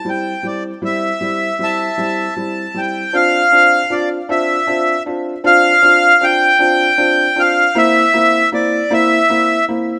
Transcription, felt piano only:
0.05 G3 C4 E4
0.43 G3 C4 E4
0.82 G3 C4 E4
1.21 G3 C4 E4
1.59 G3 C4 E4
1.98 G3 C4 E4
2.36 G3 C4 E4
2.74 G3 C4 E4
3.13 C4 D4 F4
3.52 C4 D4 F4
3.90 C4 D4 F4
4.29 C4 D4 F4
4.67 C4 D4 F4
5.06 C4 D4 F4
5.44 C4 D4 F4
5.82 C4 D4 F4
6.21 C4 D4 F4
6.59 C4 D4 F4
6.98 C4 D4 F4
7.36 C4 D4 F4
7.75 A#3 C4 E4
8.14 A#3 C4 E4
8.52 A#3 C4 E4
8.91 A#3 C4 E4
9.30 A#3 C4 E4
9.69 A#3 C4 E4

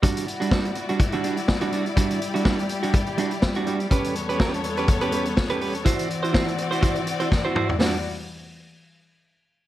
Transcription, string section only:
0.04 G3 E4 F#4 D5
1.98 G4
3.91 E2 B3 A4 C#5
5.86 E3 C4 F#4 D5
7.80 E3 G3 F#4 D5

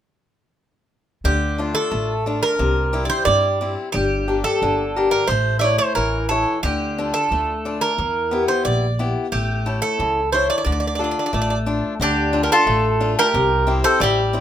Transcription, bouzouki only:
1.25 G4
1.75 A4
2.43 A#4
3.05 D5
3.10 C5
3.25 D5
3.92 G4
4.44 A4
5.11 A#4
5.28 C5
5.59 D5 E5
5.78 C5
5.95 A#4
6.29 A4
6.63 G4
7.14 A4
7.81 A#4
8.48 C5
8.65 D5
9.32 G4
9.82 A4
10.32 C5
10.50 D5
10.58 D5
10.65 D5
10.72 D5
10.80 D5
10.87 D5
10.95 D5
11.04 D5
11.11 D5
11.19 D5
11.26 D5
11.34 D5
11.42 D5
11.50 D5
12.02 G4
12.43 A#4
12.52 A4
13.19 A#4
13.84 C5
14.01 D5

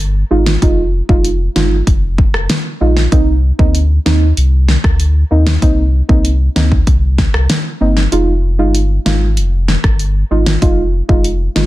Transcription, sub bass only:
Already playing: G1
0.31 G#1
0.62 F1
1.09 F1
1.56 G1
1.87 F1
2.34 F1
2.81 A#1
3.12 C2
3.59 D2
4.06 D#2
4.37 C2
4.84 D2
5.31 D#2
5.62 C2
6.09 C2
6.56 D2
6.87 C2
7.34 C2
7.81 G1
8.12 F1
8.59 G1
9.06 G#1
9.37 F1
9.84 G1
10.31 G#1
10.62 F1
11.09 F1
11.56 G1

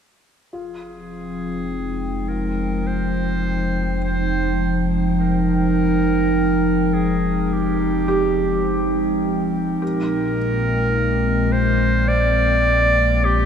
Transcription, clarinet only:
0.53 G#4
2.29 A#4
2.87 C5
4.04 C5
5.20 A#4
6.94 G#4
7.53 G4
9.82 A#4
11.53 C5
12.08 D5
13.25 G4

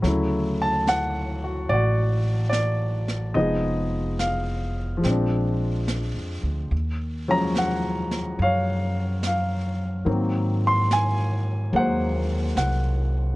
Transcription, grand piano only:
0.02 C#3 F#3 A3
0.06 E4
0.61 A5
0.88 F#5
1.44 F#4
1.69 D5
1.73 F#4
2.50 D5
3.34 F3 G#3 B3 D#4 D#5
3.40 G#4
4.20 F5
4.97 F3 G#3
5.04 C4 D4
7.28 F3 F#3 G#3 C#4 A#5
7.58 F#5
8.42 C#5 F5
9.27 F5
10.05 D#3 F#3 A#3 C4
10.67 C6
10.93 G#5
11.72 F#3 G#3 A#3 F#5
11.78 C5
12.57 F#5

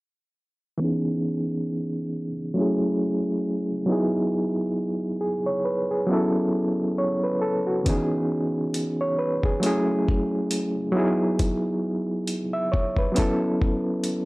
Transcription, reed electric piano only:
0.78 E3 B3 C#4
0.82 D#4 G#4
2.54 F#3 A3 C#4
2.58 E4 G#4
3.86 F#3 B3 D#4
3.91 E4 G#4
5.21 G#4
5.46 C#5
5.65 B4
5.91 G#4
6.07 F#3 B3 C#4
6.11 E4 A4
6.98 C#5
7.24 B4
7.42 A4
7.67 F#4
7.83 D#3 B3 C#4
7.88 E3 D#4 G#4
9.01 C#5
9.19 B4
9.45 G#4
9.60 F#3 A3 C#4
9.65 E4 G#4
10.92 F#3 B3 D#4
10.97 E4 G#4
12.53 E5
12.72 C#5
12.98 B4
13.12 F#3 B3 C#4
13.17 E4 A4

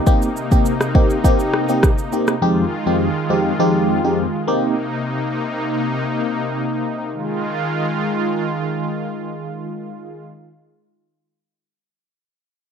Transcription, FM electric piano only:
0.06 A#3 C4 D#4 G4
0.51 A#3 C4 D#4 G4
0.95 A#3 C4 D#4 G4
1.24 A#3 C4 D#4 G4
1.69 A#3 C4 D#4 G4
2.12 A#3 C4 D#4 G4
2.42 F2 G#3 C4 D#4 G4
2.86 F2 G#3 C4 D#4 G4
3.30 F2 G#3 C4 D#4 G4
3.59 F2 G#3 C4 D#4 G4
4.04 F2 G#3 C4 D#4 G4
4.47 A#3 C4 D#4 G4

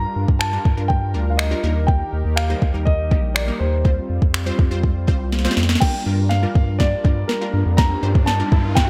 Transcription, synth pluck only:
Already playing: G3 D4 F4 A#4
0.53 G3 D4 F4 A#4
0.77 G3 D4 F4 A#4
1.14 G3 D4 F4 A#4
1.51 G3 D4 F4 A#4
1.63 G3 A#3 D#4 A#4
2.50 G3 A#3 D#4 C5
2.74 G3 A#3 D#4 A#4
3.11 G3 A#3 D#4 G4
3.48 G3 A#3 D#4 A#4
3.85 G3 C4 F4 C5
4.46 G3 C4 F4 C5
4.71 G3 C4 F4 C5
5.07 G3 C4 F4 C5
5.44 G3 C4 F4 C5
5.81 G3 D4 F4 A#4
6.06 G3 D4 F4 A#4
6.43 G3 D4 F4 A#4
6.80 G3 D4 F4 G4
7.04 G3 D4 F4 A#4
7.41 G3 D4 F4 A#4
7.78 G3 D4 F4 A#4
8.03 G3 D4 F4 C5
8.39 G3 D4 F4 A#4
8.76 G3 D4 F4 A#4

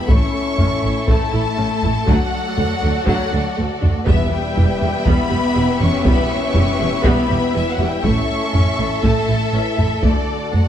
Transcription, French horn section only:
0.10 C#4
1.09 A3
2.08 F#3
3.09 F#3
4.07 E3
4.32 G3
5.07 B3
5.81 C#4
6.08 B3
6.32 C#4
7.06 B3
7.54 E3
7.70 F#3
7.88 G3
8.04 C#4
9.05 A3
9.54 E3
10.04 D3
10.53 F#3

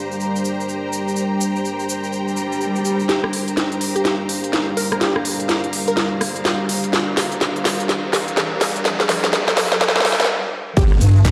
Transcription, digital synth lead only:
3.09 G4
3.96 G4
4.05 G4
4.77 A#4
4.92 A#4
5.01 G4
5.88 A#4
5.97 A#4
10.77 G4

